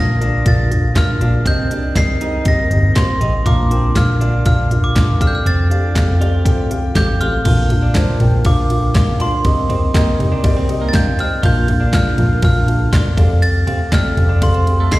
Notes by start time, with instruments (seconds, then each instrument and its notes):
Already playing: picked electric bass A#1, felt piano A#2 D4 F4 A#4 C5 F5, analog synth pad D3 A#3 F4
0.00 glockenspiel A#6
0.20 felt piano D4 F4 A#4 F5, clean electric guitar D4, closed hi-hat
0.45 picked electric bass A#1, felt piano D4 F4 A#4 F5, glockenspiel A6, kick, closed hi-hat
0.70 felt piano D4 F4 A#4 F5, closed hi-hat, floor tom
0.95 felt piano D4 F4 A#4 F5, clean electric guitar F4, glockenspiel F6, kick, snare, clap, closed hi-hat
1.08 floor tom
1.21 picked electric bass A#1, felt piano D4 F4 A#4 F5, clean electric guitar D4, closed hi-hat
1.45 picked electric bass C2, felt piano C3 C4 G4 A#4 D#5, analog synth pad C3 D#4, clean electric guitar C4, glockenspiel G6, kick, closed hi-hat
1.71 felt piano C4 G4 A#4 D#5, clean electric guitar D4, closed hi-hat
1.96 picked electric bass C2, felt piano C4 G4 A#4 D#5, glockenspiel C7, kick, snare, clap, closed hi-hat
2.21 felt piano C4 G4 A#4 D#5, clean electric guitar D#4, closed hi-hat
2.45 felt piano C4 G4 A#4 D#5, glockenspiel A#6, kick, closed hi-hat
2.71 picked electric bass G1, felt piano C4 G4 A#4 D#5, closed hi-hat, floor tom
2.95 picked electric bass C2, felt piano C4 G4 A#4 C5, clean electric guitar F4, glockenspiel C6, kick, snare, clap, closed hi-hat
3.08 floor tom
3.20 picked electric bass A1, felt piano C4 G4 A#4 D#5, clean electric guitar D#4, closed hi-hat
3.45 picked electric bass A#1, felt piano A#2 D4 F4 A#4 F5, analog synth pad D3 F4, clean electric guitar A#3, glockenspiel D6, kick, closed hi-hat
3.70 clean electric guitar C4, felt piano D4 F4 A#4 G5, closed hi-hat
3.95 picked electric bass A#1, felt piano D4 F4 A#4 F5, glockenspiel F6, kick, snare, clap, closed hi-hat
4.20 felt piano D4 F4 A#4 F5, clean electric guitar D4, closed hi-hat
4.45 picked electric bass A#1, felt piano D4 F4 A#4 F5, glockenspiel F6, kick, closed hi-hat
4.70 felt piano D4 F4 A#4 F5, closed hi-hat, floor tom
4.84 glockenspiel D6
4.95 felt piano D4 F4 A#4 F5, clean electric guitar F4, kick, snare, clap, closed hi-hat
5.09 floor tom
5.19 picked electric bass F1, analog synth pad F3 A3 G4, felt piano C4 G4 A4 F5, clean electric guitar D4, glockenspiel F6, kick, closed hi-hat
5.27 glockenspiel G6
5.35 glockenspiel F6
5.46 picked electric bass F1, clean electric guitar C4, glockenspiel A6, closed hi-hat
5.70 felt piano C4 G4 A4 F5, clean electric guitar D4, closed hi-hat
5.94 picked electric bass F1, felt piano C4 G4 A4 F5, kick, snare, clap, closed hi-hat
6.20 felt piano C4 G4 A4 D5, clean electric guitar F4, closed hi-hat
6.44 felt piano C4 G4 A4 G5, kick, closed hi-hat
6.70 picked electric bass C2, felt piano C4 G4 A4 F5, closed hi-hat
6.95 picked electric bass A1, felt piano C4 G4 A4 F5, clean electric guitar G4, glockenspiel G6, kick, snare, clap, closed hi-hat
7.08 floor tom
7.20 picked electric bass A1, felt piano C4 G4 A4 F5, clean electric guitar F4, glockenspiel F6, closed hi-hat
7.45 picked electric bass A#1, felt piano A#2 D4 F4 A#4 F5, analog synth pad D3 A#3 F4, clean electric guitar F4, kick, crash, ride
7.70 felt piano D4 F4 A#4 F5, floor tom, ride
7.83 clean electric guitar D4
7.95 felt piano D4 F4 A#4 C5, kick, snare, clap, ride
8.20 picked electric bass A#1, felt piano D4 F4 A#4 G5, floor tom, ride
8.45 picked electric bass A#1, felt piano D4 F4 A#4 F5, glockenspiel D6, kick, ride
8.70 felt piano D4 F4 A#4 F5, ride
8.95 felt piano D4 F4 A#4 F5, clean electric guitar F4, kick, snare, clap, ride
9.07 floor tom
9.20 clean electric guitar D4, felt piano D4 F4 A#4 F5, glockenspiel C6, ride
9.44 picked electric bass C2, analog synth pad C3 D#4, felt piano C3 C4 G4 A#4 D#5, kick, ride
9.69 felt piano C4 G4 A#4 D#5, clean electric guitar C4, floor tom, ride
9.94 clean electric guitar A#3, felt piano C4 G4 A#4 D#5, kick, snare, clap, ride
10.19 picked electric bass C2, felt piano C4 G4 A#4 D#5, floor tom, ride
10.32 clean electric guitar D4
10.43 picked electric bass C2, felt piano C4 G4 A#4 D5, kick, ride
10.57 clean electric guitar C4
10.69 felt piano C4 G4 A#4 D#5, ride
10.81 clean electric guitar A#3
10.89 glockenspiel A6
10.93 felt piano C4 G4 A#4 F5, clean electric guitar D4, glockenspiel G6, kick, snare, clap, ride
11.06 floor tom
11.18 felt piano C4 G4 A#4 D#5, clean electric guitar C4, glockenspiel F6, ride
11.43 picked electric bass A#1, felt piano A#2 D4 F4 A#4 F5, analog synth pad D3 A#3 F4, clean electric guitar F4, glockenspiel G6, kick, ride
11.68 felt piano D4 F4 A#4 F5, floor tom, ride
11.80 clean electric guitar D4
11.93 felt piano D4 F4 A#4 F5, glockenspiel F6, kick, snare, clap, ride
12.17 picked electric bass A#1, felt piano D4 F4 A#4 F5, floor tom, ride
12.42 picked electric bass A#1, felt piano D4 F4 A#4 F5, glockenspiel F6, kick, ride
12.67 felt piano D4 F4 A#4 F5, ride
12.92 felt piano D4 F4 A#4 D5, clean electric guitar F4, kick, snare, clap, ride
13.05 floor tom
13.16 picked electric bass F1, analog synth pad F3 A3 G4, felt piano C4 G4 A4 F5, clean electric guitar D4, kick, ride
13.42 glockenspiel A6, ride
13.67 felt piano C4 G4 A4 F5, clean electric guitar C4, floor tom, ride
13.91 clean electric guitar A3, felt piano C4 G4 A4 D5, glockenspiel F6, kick, snare, clap, ride
14.16 picked electric bass F1, felt piano C4 G4 A4 F5, floor tom, ride
14.29 clean electric guitar D4
14.41 picked electric bass F1, felt piano C4 G4 A4 F5, glockenspiel C6, kick, ride
14.54 clean electric guitar C4, ride
14.66 felt piano C4 G4 A4 F5, ride
14.80 clean electric guitar A3
14.90 felt piano C4 G4 A4 D#5, clean electric guitar D4, glockenspiel C7, kick, snare, clap, ride